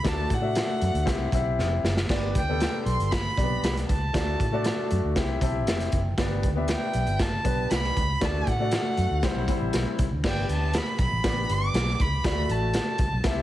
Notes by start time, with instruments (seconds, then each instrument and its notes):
0.03 fingered electric bass D2, grand piano A3 D4 F#4 D5, kick, snare, closed hi-hat
0.08 violin A5
0.30 fingered electric bass A2, violin F#5, kick, closed hi-hat
0.41 grand piano A3 D4 F#4 E5
0.55 snare, closed hi-hat
0.81 fingered electric bass F#2, closed hi-hat
0.94 fingered electric bass D2, closed hi-hat
1.06 fingered electric bass C2, grand piano C4 E4 G4 E5, kick, snare, closed hi-hat
1.32 fingered electric bass B1, grand piano C4 E4 G4 E5, kick, closed hi-hat
1.58 fingered electric bass F1, snare
1.83 fingered electric bass F#1, snare
1.97 snare
2.09 fingered electric bass G1, grand piano B3 D4 G4 D5, kick, snare, splash
2.35 fingered electric bass D2, violin G5, kick, closed hi-hat
2.49 grand piano B3 D4 G4 A4
2.60 snare, closed hi-hat
2.86 fingered electric bass B1, violin C6, closed hi-hat
3.00 fingered electric bass G1, closed hi-hat
3.11 violin B5, kick, snare, closed hi-hat
3.37 fingered electric bass B1, grand piano A#3 D4 G4 D5, kick, closed hi-hat
3.43 grand piano B3
3.62 fingered electric bass C2, violin B5, snare, closed hi-hat
3.77 snare, closed hi-hat
3.89 fingered electric bass C#2, violin A5, kick, closed hi-hat
4.13 fingered electric bass D2, grand piano A3 D4 F#4 D5, kick, snare, closed hi-hat
4.40 fingered electric bass A2, kick, closed hi-hat
4.52 grand piano A3 D4 F#4 D5
4.64 snare, closed hi-hat
4.91 fingered electric bass F#2, closed hi-hat
5.04 fingered electric bass D2
5.16 grand piano C4 E4 G4 E5, kick, snare, closed hi-hat
5.41 fingered electric bass B1, grand piano C4 E4 G4 E5 A5, kick, closed hi-hat
5.67 fingered electric bass F1, grand piano G5, snare, closed hi-hat
5.80 snare, closed hi-hat
5.92 fingered electric bass F#1, kick, closed hi-hat
6.18 fingered electric bass G1, grand piano B3 D4 G4 D5, kick, snare, closed hi-hat
6.43 fingered electric bass D2, kick, closed hi-hat
6.56 grand piano B3 D4 G4 E5
6.68 violin G5, snare, closed hi-hat
6.93 fingered electric bass B1, closed hi-hat
7.07 fingered electric bass G1, closed hi-hat
7.19 violin A5, kick, snare, closed hi-hat
7.44 fingered electric bass B1, grand piano B3 D4 G4 B4, kick, closed hi-hat
7.71 fingered electric bass C2, violin B5, snare, closed hi-hat
7.84 snare
7.96 fingered electric bass C#2, kick, closed hi-hat
8.21 fingered electric bass D2, grand piano A3 D4 F#4 D5, violin A5, kick, snare, closed hi-hat
8.47 fingered electric bass A2, violin F#5, kick, closed hi-hat
8.59 grand piano A3 D4 F#4 D5
8.71 snare, closed hi-hat
8.97 fingered electric bass F#2, closed hi-hat
9.11 fingered electric bass D2
9.23 grand piano G3 C4 E4 C5, kick, snare, closed hi-hat
9.35 fingered electric bass B1
9.48 grand piano G3 C4 E4 C5, kick, closed hi-hat
9.61 fingered electric bass A1
9.73 fingered electric bass B1, snare, closed hi-hat
9.99 fingered electric bass C2, kick, closed hi-hat
10.12 fingered electric bass D2
10.23 fingered electric bass G1, grand piano B3 D4 G4 D5, violin G5, kick, snare, crash
10.49 fingered electric bass D2, closed hi-hat
10.53 violin A5
10.73 violin B5, snare, closed hi-hat
10.98 fingered electric bass B1, violin B5, kick, closed hi-hat
11.12 fingered electric bass A1
11.24 fingered electric bass A1, grand piano B3 D4 G4 D5, kick, snare, closed hi-hat
11.49 fingered electric bass G1, violin D6, closed hi-hat
11.74 fingered electric bass B1, snare, closed hi-hat
11.88 snare
12.00 fingered electric bass C#2, violin B5, kick, closed hi-hat
12.24 fingered electric bass D2, grand piano A3 D4 F#4 D5, kick, snare, closed hi-hat
12.49 fingered electric bass A1, violin A5, closed hi-hat
12.73 snare, closed hi-hat
12.98 fingered electric bass C2, kick, closed hi-hat
13.13 fingered electric bass B1
13.24 fingered electric bass C2, grand piano C4 E4 G4 E5, kick, snare, closed hi-hat